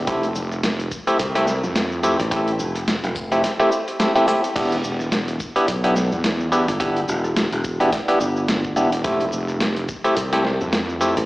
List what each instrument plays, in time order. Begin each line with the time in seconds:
0.07 wobble bass F1, clav A3 C4 E4 G4, kick, closed hi-hat, shaker
0.23 closed hi-hat, shaker
0.35 wobble bass F1, shaker
0.52 cross-stick, shaker
0.63 snare, closed hi-hat, shaker
0.80 closed hi-hat, shaker
0.92 kick, shaker
1.07 clav A3 C4 E4 G4, closed hi-hat, shaker
1.19 fingered electric bass C2, kick, closed hi-hat, shaker
1.35 clav A3 C4 E4 G4, closed hi-hat, shaker
1.47 snare, shaker
1.63 wobble bass F2, shaker
1.76 snare, closed hi-hat, shaker
1.92 shaker
2.03 clav A3 C4 E4 G4, shaker
2.19 fingered electric bass A1, cross-stick, closed hi-hat, shaker
2.31 clav A3 C4 E4 G4, kick, closed hi-hat, shaker
2.48 closed hi-hat, shaker
2.60 fingered electric bass F1, shaker
2.76 cross-stick, closed hi-hat, shaker
2.88 snare, closed hi-hat, shaker
3.04 fingered electric bass F1, closed hi-hat, shaker
3.16 kick, shaker
3.32 clav A3 C4 E4 G4, closed hi-hat, shaker
3.44 snare, closed hi-hat, shaker
3.60 clav A3 C4 E4 G4, cross-stick, shaker
3.72 shaker
3.88 closed hi-hat, shaker
4.00 clav A3 C4 E4 G4, snare, closed hi-hat, shaker
4.16 clav A3 C4 E4 G4, closed hi-hat, shaker
4.28 clav A3 C4 E4 G4, cross-stick, shaker
4.44 closed hi-hat, shaker
4.56 wobble bass E1, clav B3 D4 E4 G4, kick, closed hi-hat, crash, shaker
4.72 closed hi-hat, shaker
4.84 wobble bass E1, shaker
5.00 cross-stick, shaker
5.12 snare, closed hi-hat, shaker
5.28 closed hi-hat, shaker
5.40 kick, shaker
5.56 clav B3 D4 E4 G4, closed hi-hat, shaker
5.68 fingered electric bass B1, kick, closed hi-hat, shaker
5.84 clav B3 D4 E4 G4, closed hi-hat, shaker
5.96 snare, shaker
6.12 wobble bass E2, shaker
6.24 snare, closed hi-hat, shaker
6.40 shaker
6.52 clav B3 D4 E4 G4, shaker
6.68 fingered electric bass G1, cross-stick, closed hi-hat, shaker
6.80 clav B3 D4 E4 G4, kick, closed hi-hat, shaker
6.97 closed hi-hat, shaker
7.08 fingered electric bass E1, shaker
7.24 cross-stick, shaker
7.37 snare, closed hi-hat, shaker
7.52 fingered electric bass E1, closed hi-hat, shaker
7.64 kick, shaker
7.80 clav B3 D4 E4 G4, closed hi-hat, shaker
7.92 kick, snare, closed hi-hat, shaker
8.08 clav B3 D4 E4 G4, cross-stick, closed hi-hat, shaker
8.20 fingered electric bass G1, shaker
8.37 shaker
8.48 snare, closed hi-hat, shaker
8.64 kick, shaker
8.76 wobble bass E1, clav B3 D4 E4 G4, cross-stick, shaker
8.92 closed hi-hat, shaker
9.04 wobble bass F1, clav A3 C4 E4 G4, kick, closed hi-hat, shaker
9.21 closed hi-hat, shaker
9.32 wobble bass F1, shaker
9.48 cross-stick, shaker
9.60 snare, closed hi-hat, shaker
9.77 closed hi-hat
9.89 kick, shaker
10.04 clav A3 C4 E4 G4, closed hi-hat, shaker
10.17 fingered electric bass C2, kick, closed hi-hat, shaker
10.33 clav A3 C4 E4 G4, closed hi-hat, shaker
10.45 snare
10.61 wobble bass F2, shaker
10.73 snare, closed hi-hat, shaker
10.89 shaker
11.01 clav A3 C4 E4 G4, shaker
11.17 fingered electric bass A1, cross-stick, closed hi-hat, shaker